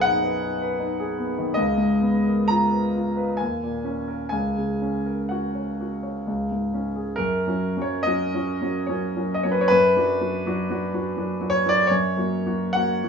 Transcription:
Already playing: B1 F#2 B3 G#4 G#5
0.01 D#4 F#5
0.24 B4
0.43 D#4
0.62 B4
0.80 D#4
1.00 G#4
1.18 B3
1.38 D#3
1.54 C#2 D#5
1.77 G#2
2.00 B3
2.26 A#4
2.48 F4 A#5
2.73 B4
2.96 F4
3.17 B4
3.37 D#2 G#5
3.63 A#2
3.85 C#4
4.08 A#4
4.29 C#2 G#5
4.57 C#3
4.82 C#4
5.06 A#4
5.29 F#4 F#5
5.55 C#5
5.81 F#4
6.03 C#5
6.27 C#2
6.51 G#2
6.74 C#4
6.96 G#4
7.16 F#2 A#4
7.47 F#3 C#4 F#4
7.77 F#3 C#4 F#4
7.82 C#5
8.03 F#3 C#4 D#5
8.07 F#4
8.34 F#3 C#4 F#4
8.62 F#3 C#4 F#4
8.87 F#3 C#4 F#4 C#5
9.16 F#3 C#4 F#4
9.34 D#5
9.43 F#3 C#4 F#4 C#5
9.52 B4
9.61 C#5
9.68 F#2 B4
9.96 F#3 D4 F#4
10.21 F#3 D4 F#4
10.46 F#3 D4 F#4
10.70 F#3 D4 F#4
10.94 F#3 D4 F#4
11.17 F#3 D4 F#4
11.41 F#3 D4 F#4
11.50 C#5
11.66 F#3 D4 F#4 D5
11.87 F#2 C#5
12.17 F#3 A#3 F#4
12.46 F#3 A#3 F#4
12.73 F#3 A#3 F#4 F#5
13.03 F#3 A#3 F#4

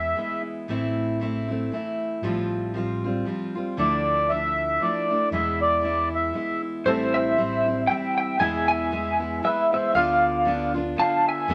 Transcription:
Already playing: E2 E3 G#3 B3 E4 E5
0.16 E3 G#3 B3 E4
0.68 A1 A2 E3 A3 C4 E4
1.20 E3 A3 C4 E4
1.48 A3 C4 E4
1.72 E3 A3 C4 E4
2.22 A1 A2 F3 G3 C4 F4
2.74 F3 G3 C4 F4
3.04 G3 C4 F4
3.25 F3 G3 C4 F4
3.55 G3 C4 F4
3.77 D2 D3 F3 A3 D4 E4 D5
4.30 F3 A3 D4 E4 E5
4.80 F3 A3 D4 E4 D5
5.09 A3 D4 E4
5.31 E2 B2 E3 G#3 B3 E4 E5
5.61 D5
5.82 E3 G#3 B3 E4
6.15 E5
6.33 E3 G#3 B3 E4
6.85 A1 A2 E3 G3 C4 E4 A4 C5
7.14 C5 E5
7.37 E3 G3 C4 E4
7.66 G3 C4 E4
7.87 E3 G3 C4 E4 E5 G5
8.18 E5 G5
8.39 E1 E2 B2 E3 G#3 B3 E4 E5 G#5
8.68 E5 G#5
8.91 E3 G#3 B3 E4
9.20 E3 G#3 B3 E4
9.43 E3 G#3 B3 E4 B4 E5
9.72 E3 G#3 B3 E4 C5 E5
9.94 D2 D3 B3 D4 F4 D5 F5
10.45 D3 B3 D4 F4
10.74 B3 D4 F4
10.96 D3 B3 D4 F4 F5 A5
11.27 E5 G#5
11.48 E2 B2 E3 G#3 B3 E4

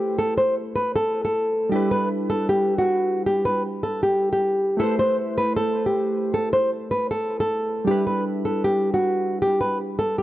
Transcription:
Already playing: A3 E4 G4 B4 C5
0.19 A4
0.38 C5
0.76 B4
0.96 A4
1.25 A4
1.69 G3 D4 G4
1.73 E4 B4
1.91 B4
2.30 A4
2.49 G4
2.78 F#4
3.26 G4
3.45 B4
3.83 A4
4.03 G4
4.33 G4
4.77 A3 E4 A4
4.81 B4 C5
4.99 C5
5.38 B4
5.57 A4
5.86 G4
6.34 A4
6.53 C5
6.91 B4
7.11 A4
7.40 A4
7.85 G3 D4 G4
7.89 E4 B4
8.07 B4
8.45 A4
8.64 G4
8.94 F#4
9.42 G4
9.61 B4
9.99 A4
10.18 G4

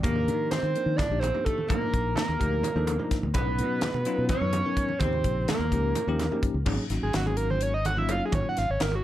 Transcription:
0.03 D#2 F3 A#3 D4 D#4 G4 A#4, kick, closed hi-hat, muted conga
0.16 low conga
0.28 D#3, closed hi-hat
0.51 C4 C5, snare, closed hi-hat, high conga, low conga
0.63 D#3, muted conga
0.75 F3 A#3 D4 D#4 A#4, closed hi-hat
0.86 D#3
0.97 D4 D5, kick, snare, closed hi-hat, high conga, low conga
1.10 A#1 F3 A#3 D4 D#4 G4
1.19 C4 C5, muted conga
1.24 closed hi-hat
1.35 F3 A#3 D4 D#4 G4, low conga
1.45 A3 A4, kick, closed hi-hat
1.58 high conga
1.68 F3 A#3 D4 D#4 A#4, kick, closed hi-hat, muted conga
1.82 low conga
1.93 A#1, kick, closed hi-hat, low conga
2.16 A#3 A#4, snare, closed hi-hat, high conga, low conga
2.28 D#2, muted conga
2.39 D2 F3 A#3 D4 D#4 G4, kick, closed hi-hat
2.52 low conga
2.63 closed hi-hat, high conga, low conga
2.76 D#2 F3 A#3 D4 D#4 A4
2.87 closed hi-hat, muted conga
2.99 F3 A#3 D4 D#4 A#4, low conga
3.11 muted fingered electric bass stroke, kick, snare, closed hi-hat
3.23 D2, high conga
3.34 B1 F#3 B3 C#4 D#4 B4, kick, closed hi-hat, muted conga
3.38 B3
3.47 low conga
3.59 B2, closed hi-hat, low conga
3.81 snare, closed hi-hat, high conga, low conga
3.94 B2, muted conga
4.05 F#3 B3 C#4 D#4 F4, closed hi-hat
4.18 B2, low conga
4.29 C#4 C#5, kick, closed hi-hat, high conga, low conga
4.41 F#2 F#3 B3 C#4 D#4 B4
4.53 closed hi-hat, muted conga
4.65 F#3 B3 C#4 D#4 A#4, low conga
4.77 kick, closed hi-hat
4.89 high conga
4.99 D#2 C#3 F3 A#3 C4 D#4 C5, kick, closed hi-hat, muted conga
5.03 G4
5.13 low conga
5.24 A#1, kick, closed hi-hat
5.48 A#3 A#4, snare, closed hi-hat, high conga, low conga
5.59 D#2, muted conga
5.71 C#2 F3 A#3 C#4 D#4 G4, kick, closed hi-hat
5.95 closed hi-hat, high conga, low conga
6.07 D#2 F3 A#3 C#4 D#4 G4
6.19 snare, closed hi-hat, muted conga
6.32 F3 A#3 C#4 D#4 G4, low conga
6.43 muted fingered electric bass stroke, kick, closed hi-hat, low conga
6.54 C#2
6.66 G#1 F#3 A#3 C#4 D#4 G#4, kick, crash, muted conga, high conga
6.90 G#1 F#3 A#3 C#4 D#4 F#4, snare, closed hi-hat
7.03 G#1 G#4
7.13 G#1 F#3 A#3 C#4 D#4 F#4, snare, closed hi-hat, high conga
7.26 G#4, muted conga, low conga
7.37 A#4, closed hi-hat, low conga
7.50 C5, high conga
7.61 C#5, closed hi-hat
7.74 D#5
7.85 F#5, closed hi-hat, muted conga
7.96 F#3 A#3 C#4 D#4 F4 E5, high conga, low conga
8.09 F#1 F5, closed hi-hat, low conga
8.25 G#4
8.32 G#1 C#5, kick, closed hi-hat, muted conga, high conga
8.49 F#5
8.57 G#1 F5, snare, closed hi-hat
8.70 G#1 C#5
8.80 G#1 A#4, snare, closed hi-hat, high conga
8.92 F#4, muted conga, low conga

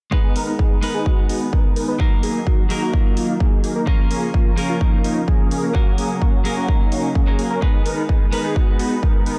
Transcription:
0.11 D#3 G#3 B3 D#4 G#4 B4, kick
0.36 B3 D#4 A#4, open hi-hat
0.59 B3 D#4 G#4, kick
0.81 G#3 B3 D#4 A#4 B4, open hi-hat
0.94 B3 D#4 G#4
1.06 kick
1.29 B3 D#4 F#4, open hi-hat
1.53 B3 D#4 A#4, kick
1.76 B3 D#4 A#4, open hi-hat
1.88 B3 D#4 B4
1.99 F#3 A#3 D#4 F#4 A#4, kick
2.23 A#3 D#4 G#4, open hi-hat
2.47 A#3 D#4 F#4, kick
2.69 F#3 A#3 D#4 G#4 A#4, open hi-hat
2.82 A#3 D#4 F#4
2.94 A#3 D#4 F4, kick
3.17 A#3 D#4 F4, open hi-hat
3.40 A#3 D#4 G#4, kick
3.64 A#3 D#4 G#4, open hi-hat
3.76 A#3 D#4 A#4
3.86 C#3 F3 A#3 C#4 F4 A#4, kick
4.11 A#3 C#4 G#4, open hi-hat
4.34 A#3 C#4 F4, kick
4.56 F3 A#3 C#4 G#4 A#4, open hi-hat
4.69 A#3 C#4 F4
4.81 A#3 C#4 D#4, kick
5.04 A#3 C#4 D#4, open hi-hat
5.28 A#3 C#4 G#4, kick
5.51 A#3 C#4 G#4, open hi-hat
5.63 A#3 C#4 A#4
5.74 F#3 A#3 C#4 F#4 A#4, kick
5.98 A#3 C#4 G#4, open hi-hat
6.22 A#3 C#4 F#4, kick
6.44 F#3 A#3 C#4 G#4 A#4, open hi-hat
6.57 A#3 C#4 F#4
6.68 A#3, kick
6.92 A#3 C#4 D#4, open hi-hat
7.15 A#3 C#4 G#4, kick
7.26 F#3 A#3 C#4 A#4
7.39 A#3 C#4 G#4, open hi-hat
7.51 A#3 C#4 A#4
7.61 D#3 G#3 B3 D#4 G#4 B4, kick
7.86 B3 D#4 A#4, open hi-hat
8.09 B3 D#4 G#4, kick
8.31 G#3 B3 D#4 A#4 B4, open hi-hat
8.44 B3 D#4 G#4
8.56 B3 F#4, kick
8.79 B3 D#4 F#4, open hi-hat
9.03 B3 D#4 A#4, kick
9.26 B3 D#4 A#4, open hi-hat

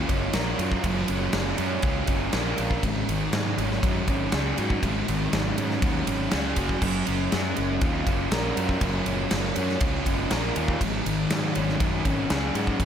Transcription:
Already playing: F#3 F4
0.09 F#1 C#4, kick, ride
0.33 A#1 A#4, snare, ride
0.59 F#2 F4, ride
0.72 kick
0.84 F#1 F#3, kick, ride
1.08 F#1 C#4, ride
1.33 F#1 F#3, snare, ride
1.58 F#2 C#4, ride
1.82 C#2 F4, kick, ride
2.07 F#1 C#4, kick, ride
2.33 A#1 A#4, snare, ride
2.58 A#1 F4, ride
2.71 kick
2.83 G#1 G#2, kick, ride
3.08 G#1 D#3, ride
3.33 G#2 F#3, snare, ride
3.58 G#1 C#4, ride
3.71 snare
3.83 F#2 F#4, kick, ride
4.08 G#1 C#4, kick, ride
4.32 C#2 G#4, snare, ride
4.58 G#2 F#4, ride
4.70 kick
4.83 G#1 G#2, kick, ride
5.08 G#1 D#3, ride
5.33 G#1 F#3, snare, ride
5.58 G#2 C#4, ride
5.70 snare
5.82 D#2 F#4, kick, ride
6.07 G#1 C#4, ride
6.31 C#2 G#4, snare, ride
6.56 F#1 F#4, kick, ride
6.69 kick
6.82 F#1 F#3, kick, crash
7.07 F#1 C#4, ride
7.32 F#2 F#3, snare, ride
7.56 F#1 C#4, ride
7.81 D#2 F4, kick, ride
8.07 F#1 C#4, kick, ride
8.32 A#1 A#4, snare, ride
8.57 F#2 F4, ride
8.69 kick
8.81 F#1 F#3, kick, ride
9.06 F#1 C#4, ride
9.31 F#1 F#3, snare, ride
9.56 F#2 C#4, ride
9.69 snare
9.80 C#2 F4, kick, ride
10.05 F#1 C#4, kick, ride
10.30 A#1 A#4, snare, ride
10.56 D#2 F4, ride
10.68 kick
10.81 G#1 G#2, kick, ride
11.05 G#1 D#3, ride
11.30 G#2 F#3, snare, ride
11.55 G#1 C#4, ride
11.68 snare
11.80 F#2 F#4, kick, ride
12.05 G#1 C#4, kick, ride
12.30 C#2 G#4, snare, ride
12.54 G#2 F#4, ride
12.67 kick
12.80 G#1 G#2, kick, ride

